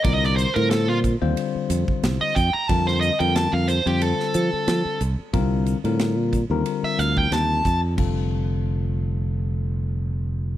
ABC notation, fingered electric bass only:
X:1
M:4/4
L:1/16
Q:"Swing 16ths" 1/4=91
K:Fmix
V:1 name="Fingered electric bass" clef=bass
C,,3 A,,2 B,,2 E,, z2 F,, z C,, z F,, z | F,,3 F,,2 F,,2 F,,2 z F, z F, z C,, z | C,,3 A,,2 B,,2 E,, z2 D,,2 E,,2 F,,2 | F,,,16 |]